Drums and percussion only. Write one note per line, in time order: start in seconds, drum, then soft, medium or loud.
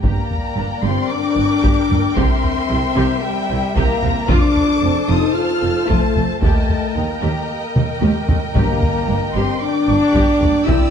0.04 taiko medium
0.31 taiko low soft
1.64 taiko medium
1.91 taiko low soft
2.17 taiko loud
2.44 taiko low soft
3.77 taiko medium
4.03 taiko low medium
4.30 taiko loud
4.56 taiko low soft
5.90 taiko medium
6.16 taiko low soft
6.42 taiko medium
6.69 taiko low soft
7.76 taiko mid medium
8.02 taiko high loud
8.29 taiko low medium
8.56 taiko medium
8.82 taiko low medium
10.15 taiko medium
10.42 taiko low medium
10.69 taiko loud